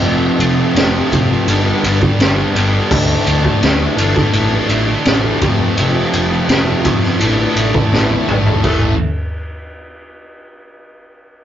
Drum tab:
CC |----------------|x---------------|----------------|x---------------|
RD |--x-x-x-x-x-x-x-|--x-x-x-x-x-x-x-|x-x-x-x-x-x-----|----------------|
SD |----o-------o---|----o--o----o---|----o--o----o---|----------------|
T1 |----------------|----------------|-------------o--|----------------|
T2 |----------------|----------------|--------------o-|----------------|
FT |----------------|----------------|---------------o|----------------|
BD |------o----o----|o--o---o------o-|------o----o----|o---------------|